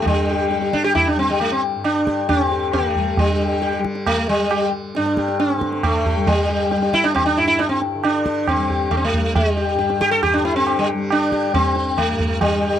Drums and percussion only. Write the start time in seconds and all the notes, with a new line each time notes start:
0.06 tabla tin, tabla ge
0.51 tabla te
0.62 tabla te
0.73 tabla ke
0.84 tabla te
0.95 tabla na, tabla ge
1.40 tabla na
1.84 tabla na
2.07 tabla ke
2.29 tabla na, tabla ge
2.51 tabla te
2.73 tabla na, tabla ge
2.95 tabla ge
3.17 tabla tin, tabla ge
3.62 tabla te
3.73 tabla te
3.84 tabla ke
3.95 tabla te
4.06 tabla na, tabla ge
4.51 tabla na
4.95 tabla te
5.06 tabla te
5.17 tabla ke
5.28 tabla te
5.40 tabla te
5.50 tabla te
5.61 tabla ke
5.72 tabla te
5.83 tabla na, tabla ge
6.05 tabla ge
6.27 tabla tin, tabla ge
6.71 tabla te
6.82 tabla te
6.93 tabla ke
7.04 tabla te
7.16 tabla na, tabla ge
7.60 tabla te
7.82 tabla te
8.04 tabla na
8.26 tabla ke
8.48 tabla na, tabla ge
8.69 tabla ge
8.91 tabla na, tabla ge
9.13 tabla ge
9.35 tabla tin, tabla ge
9.79 tabla te
9.90 tabla te
10.01 tabla ke
10.12 tabla te
10.23 tabla na, tabla ge
10.45 tabla te
10.67 tabla na
11.10 tabla na
11.32 tabla ke
11.54 tabla na, tabla ge
11.76 tabla te
11.98 tabla na, tabla ge
12.19 tabla ge
12.41 tabla tin, tabla ge